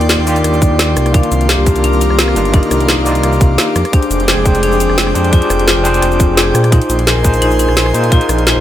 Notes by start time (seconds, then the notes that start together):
Already playing: D#2 A#3 D4 D#4 F4 G4 A#4 D5 G5 C6
0.01 closed hi-hat
0.09 D#4, snare, closed hi-hat
0.19 D#2
0.25 A#3 F4 G4 D5, open hi-hat, shaker
0.36 closed hi-hat, shaker
0.44 D#2, cross-stick, closed hi-hat
0.54 shaker
0.62 kick, closed hi-hat, shaker
0.71 D#2
0.79 A#4, snare, closed hi-hat
0.97 C2, cross-stick, closed hi-hat, shaker
1.06 cross-stick, closed hi-hat
1.13 D#3 A#3 D4 F4 A#4 F5 D6, kick, closed hi-hat
1.23 closed hi-hat
1.32 C2, closed hi-hat, shaker
1.41 closed hi-hat
1.49 G4, snare, closed hi-hat
1.58 C2
1.65 D#3 A#3 D4 F4, kick, closed hi-hat, shaker
1.76 closed hi-hat, shaker
1.84 C2 D4, closed hi-hat
1.93 shaker
2.01 D4, closed hi-hat, shaker
2.10 C2, cross-stick
2.19 snare, closed hi-hat
2.28 cross-stick
2.35 G1 A#3 D4 D#4 F4, closed hi-hat, shaker
2.45 closed hi-hat
2.52 A#3 D#4 F4 D5, kick, closed hi-hat
2.63 closed hi-hat
2.71 C2, cross-stick, closed hi-hat, shaker
2.80 closed hi-hat
2.89 D#4, snare, closed hi-hat
2.98 C2
3.04 A#3 D#4 F4 A#4 D5, open hi-hat, shaker
3.15 closed hi-hat, shaker
3.23 C2, cross-stick, closed hi-hat
3.33 shaker
3.41 kick, closed hi-hat, shaker
3.50 C2
3.58 G4, snare, closed hi-hat
3.76 F2 G#3 G5, cross-stick, closed hi-hat, shaker
3.85 cross-stick, closed hi-hat
3.92 D4 G4 G#4 C5, kick, closed hi-hat
4.02 closed hi-hat
4.11 F1, closed hi-hat, shaker
4.20 closed hi-hat
4.28 G#4, snare, closed hi-hat
4.37 F1
4.44 D4 G#4 C5 G5, kick, closed hi-hat, shaker
4.55 closed hi-hat, shaker
4.63 F1 D4, closed hi-hat
4.72 shaker
4.80 D4, closed hi-hat, shaker
4.90 F1, cross-stick
4.98 snare, closed hi-hat
5.07 cross-stick
5.14 F2 D4 G4 G#4 C5, closed hi-hat, shaker
5.24 closed hi-hat
5.31 D4 F4 G4 G#4 C5, kick, closed hi-hat
5.42 closed hi-hat
5.50 F1, cross-stick, closed hi-hat, shaker
5.59 closed hi-hat
5.68 F4, snare, closed hi-hat
5.77 F1
5.83 D4 G#4 C5 G5, open hi-hat, shaker
5.94 closed hi-hat, shaker
6.02 F1, cross-stick, closed hi-hat
6.12 shaker
6.20 kick, closed hi-hat, shaker
6.29 F1
6.37 G#4, snare, closed hi-hat
6.55 A#2, cross-stick, closed hi-hat, shaker
6.64 cross-stick, closed hi-hat
6.70 D#4 F4 G#4 C5 G#5 C6, kick, closed hi-hat
6.82 closed hi-hat
6.90 A#1, closed hi-hat, shaker
6.99 closed hi-hat
7.07 A#4, snare, closed hi-hat
7.16 A#1
7.23 D#4 F4 G#4 C5, kick, closed hi-hat, shaker
7.34 closed hi-hat, shaker
7.42 A#1 D#4, closed hi-hat
7.51 shaker
7.59 D#4, closed hi-hat, shaker
7.69 A#1, cross-stick
7.77 snare, closed hi-hat
7.86 cross-stick
7.93 A#2 D#4 F4 G#4 C5, closed hi-hat, shaker
8.04 closed hi-hat
8.10 D#4 F4 G#4 C5, kick, closed hi-hat
8.21 closed hi-hat
8.29 A#1, cross-stick, closed hi-hat, shaker
8.38 closed hi-hat
8.47 F4, snare, closed hi-hat
8.56 A#1